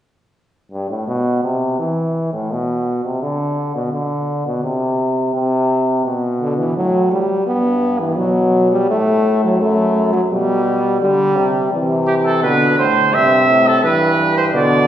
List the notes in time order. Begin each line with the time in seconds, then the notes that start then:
0.71 G2
0.89 A2
1.08 B2
1.43 C3
1.79 E3
2.33 A2
2.52 B2
3.05 C3
3.22 D3
3.75 B2
3.93 D3
4.46 B2
4.64 C3
5.34 C3
6.05 B2
6.41 D3
6.58 E3
6.76 A2 F#3
7.11 G3
7.47 G2 B3
8.00 E3
8.18 B2 F#3
8.72 G3
8.90 A2 A3
9.44 F#3
9.61 F#2 A3
10.13 F#3
10.31 B2 G3
11.01 D3 G3
11.37 C3
11.72 C3 E3
12.06 G4
12.25 A4
12.43 B2 D3 B4
12.78 A2 C5
13.13 G2 C3 E5
13.48 A2
13.67 A4
13.83 G2 E3 B4
14.19 G2
14.37 C5
14.54 B2 D3 D5